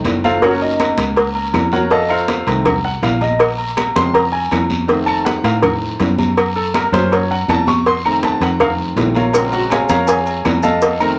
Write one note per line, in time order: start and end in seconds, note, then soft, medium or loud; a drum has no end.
0.00 0.39 D#3 medium
0.00 0.39 A3 medium
0.00 0.39 C4 medium
0.04 0.92 F#1 loud
0.04 cowbell medium
0.04 high conga medium
0.04 low timbale medium
0.04 low agogo medium
0.04 short guiro medium
0.24 0.42 F4 medium
0.24 0.43 A4 medium
0.24 0.42 C5 medium
0.24 0.42 F5 loud
0.24 high conga medium
0.24 low agogo loud
0.24 short guiro medium
0.42 1.88 A#3 medium
0.42 1.88 C#4 medium
0.42 0.61 F#4 medium
0.42 0.61 A#4 medium
0.42 0.61 C#5 medium
0.42 0.61 F#5 loud
0.42 cowbell loud
0.42 high conga soft
0.42 low agogo loud
0.42 long guiro medium
0.42 claves medium
0.61 0.96 D#4 medium
0.61 0.96 D#5 medium
0.61 high conga soft
0.61 low agogo medium
0.80 cowbell medium
0.80 high conga medium
0.80 low timbale medium
0.80 low agogo loud
0.80 short guiro medium
0.80 claves medium
0.98 1.50 C#2 loud
0.98 cowbell medium
0.98 high conga loud
0.98 short guiro medium
1.16 cowbell loud
1.16 low agogo medium
1.16 long guiro medium
1.35 high conga soft
1.35 low agogo medium
1.54 2.41 F2 loud
1.54 cowbell medium
1.54 high conga medium
1.54 low timbale medium
1.54 low agogo loud
1.54 short guiro medium
1.54 claves medium
1.72 1.91 F#4 medium
1.72 1.91 A#4 medium
1.72 1.91 C#5 medium
1.72 1.91 F#5 medium
1.72 high conga medium
1.72 short guiro medium
1.90 2.09 A4 medium
1.90 2.10 D#5 medium
1.90 2.09 F5 medium
1.90 2.09 A5 loud
1.90 cowbell loud
1.90 high conga soft
1.90 low agogo medium
1.90 long guiro medium
2.09 2.45 F4 medium
2.09 2.45 A4 medium
2.09 2.45 C5 medium
2.09 2.45 F5 medium
2.09 high conga soft
2.09 low agogo loud
2.09 claves medium
2.28 cowbell medium
2.28 high conga loud
2.28 low timbale medium
2.28 short guiro medium
2.47 2.99 C2 medium
2.47 2.72 D#3 medium
2.47 2.72 A3 medium
2.47 2.73 C4 medium
2.47 cowbell medium
2.47 low agogo loud
2.47 short guiro medium
2.65 cowbell loud
2.65 high conga soft
2.65 low conga loud
2.65 low agogo loud
2.65 long guiro medium
2.65 claves medium
2.85 3.03 F#5 loud
2.85 high conga soft
3.02 3.90 A#1 loud
3.02 3.21 F5 medium
3.02 cowbell medium
3.02 high conga medium
3.02 low timbale medium
3.02 low agogo medium
3.02 short guiro medium
3.21 3.40 D#5 medium
3.21 high conga medium
3.21 low agogo medium
3.21 short guiro medium
3.39 cowbell loud
3.39 high conga soft
3.39 low agogo medium
3.39 long guiro medium
3.39 claves medium
3.58 high conga soft
3.58 low agogo medium
3.77 cowbell medium
3.77 high conga loud
3.77 low timbale medium
3.77 low agogo loud
3.77 short guiro medium
3.77 claves medium
3.95 4.48 F2 loud
3.95 4.21 C#3 medium
3.95 4.21 G#3 medium
3.95 4.21 C4 medium
3.95 4.14 C6 loud
3.95 cowbell medium
3.95 high conga loud
3.95 short guiro medium
4.14 4.33 A#5 medium
4.14 cowbell loud
4.14 high conga soft
4.14 low agogo medium
4.14 long guiro medium
4.32 4.51 G#5 medium
4.32 high conga soft
4.32 low agogo loud
4.51 5.39 F2 loud
4.51 cowbell medium
4.51 high conga medium
4.51 low timbale medium
4.51 low agogo loud
4.51 short guiro medium
4.51 claves medium
4.70 high conga medium
4.70 short guiro medium
4.87 6.33 D#3 medium
4.87 6.33 A3 medium
4.87 6.33 C4 medium
4.87 cowbell loud
4.87 high conga soft
4.87 low agogo medium
4.87 long guiro medium
5.06 5.25 A5 loud
5.06 high conga soft
5.06 low agogo loud
5.06 claves medium
5.25 5.44 F#5 medium
5.25 cowbell medium
5.25 high conga medium
5.25 low timbale medium
5.25 short guiro medium
5.44 5.96 A2 loud
5.44 5.56 F5 medium
5.44 cowbell medium
5.44 low agogo medium
5.44 short guiro medium
5.62 cowbell loud
5.62 high conga soft
5.62 low conga medium
5.62 low agogo loud
5.62 long guiro medium
5.62 claves medium
5.82 high conga soft
6.00 6.87 F#2 loud
6.00 cowbell medium
6.00 high conga medium
6.00 low timbale medium
6.00 low agogo medium
6.00 short guiro medium
6.18 high conga medium
6.18 low agogo medium
6.18 short guiro medium
6.37 cowbell loud
6.37 high conga soft
6.37 low agogo loud
6.37 long guiro medium
6.37 claves medium
6.56 6.74 A4 medium
6.56 high conga soft
6.56 low agogo medium
6.74 6.92 A#4 medium
6.74 cowbell medium
6.74 high conga medium
6.74 low timbale medium
6.74 low agogo loud
6.74 short guiro medium
6.74 claves medium
6.92 7.45 F#2 loud
6.92 7.18 F#3 medium
6.92 7.18 A#3 medium
6.92 7.18 C#4 medium
6.92 7.11 C5 loud
6.92 cowbell medium
6.92 high conga loud
6.92 short guiro medium
7.12 7.30 C#5 medium
7.12 cowbell loud
7.12 high conga soft
7.12 low agogo loud
7.12 long guiro medium
7.31 7.49 F#5 loud
7.31 high conga soft
7.31 low agogo medium
7.48 8.35 F2 medium
7.48 7.67 A5 loud
7.48 cowbell medium
7.48 high conga medium
7.48 low timbale medium
7.48 low agogo loud
7.48 short guiro medium
7.48 claves medium
7.67 7.86 C#6 loud
7.67 high conga medium
7.67 short guiro medium
7.86 8.05 C6 loud
7.86 cowbell loud
7.86 high conga soft
7.86 low agogo medium
7.86 long guiro medium
8.05 8.96 D#3 medium
8.05 8.96 A3 soft
8.05 8.97 C4 medium
8.05 8.23 A#5 medium
8.05 high conga soft
8.05 low agogo loud
8.05 claves medium
8.23 8.42 A5 medium
8.23 cowbell medium
8.23 high conga medium
8.23 low timbale medium
8.23 short guiro medium
8.41 8.93 F2 loud
8.41 8.60 F#5 medium
8.41 cowbell medium
8.41 low agogo medium
8.41 short guiro medium
8.60 8.72 F5 medium
8.60 cowbell loud
8.60 high conga soft
8.60 low conga medium
8.60 low agogo loud
8.60 long guiro medium
8.60 claves medium
8.79 high conga soft
8.96 9.83 A#1 loud
8.96 9.14 D#3 soft
8.96 9.14 A3 soft
8.96 9.14 C4 medium
8.96 cowbell medium
8.96 high conga medium
8.96 low timbale medium
8.96 low agogo medium
8.96 short guiro medium
9.14 9.51 F4 medium
9.14 9.51 A#4 medium
9.14 9.51 C#5 medium
9.14 9.50 F5 medium
9.14 high conga medium
9.14 low agogo medium
9.14 short guiro medium
9.33 9.87 C#3 medium
9.33 9.87 G#3 medium
9.33 9.88 C4 medium
9.33 cowbell loud
9.33 low agogo loud
9.33 long guiro medium
9.33 claves medium
9.33 maracas loud
9.52 9.71 F#4 medium
9.52 9.71 F#5 medium
9.52 high conga soft
9.52 low agogo medium
9.52 maracas soft
9.70 9.90 G#4 medium
9.70 9.89 C#5 medium
9.70 9.89 F5 medium
9.70 9.90 G#5 medium
9.70 cowbell medium
9.70 high conga medium
9.70 low timbale medium
9.70 low agogo loud
9.70 short guiro medium
9.70 claves medium
9.70 maracas soft
9.89 10.41 F2 loud
9.89 10.08 A#4 medium
9.89 10.07 C#5 medium
9.89 10.07 F5 medium
9.89 10.08 A#5 loud
9.89 cowbell medium
9.89 high conga loud
9.89 short guiro medium
9.89 maracas medium
10.07 10.60 G#4 medium
10.07 10.60 C#5 medium
10.07 10.60 F5 medium
10.07 10.60 G#5 medium
10.07 cowbell loud
10.07 high conga soft
10.07 low agogo loud
10.07 long guiro medium
10.07 maracas medium
10.26 high conga soft
10.26 low agogo medium
10.26 maracas soft
10.45 11.19 F2 medium
10.45 cowbell medium
10.45 high conga medium
10.45 low timbale medium
10.45 low agogo loud
10.45 short guiro medium
10.45 claves medium
10.45 maracas soft
10.63 10.98 A4 medium
10.63 10.98 D#5 medium
10.63 10.98 F5 medium
10.63 10.98 A5 medium
10.63 high conga medium
10.63 short guiro medium
10.63 maracas medium
10.81 cowbell loud
10.81 high conga soft
10.81 low agogo medium
10.81 long guiro medium
10.81 maracas loud
11.00 11.19 D#3 medium
11.00 11.19 A3 medium
11.00 11.19 C4 medium
11.00 11.19 A#4 medium
11.00 11.19 A#5 loud
11.00 high conga soft
11.00 low agogo loud
11.00 claves medium
11.00 maracas soft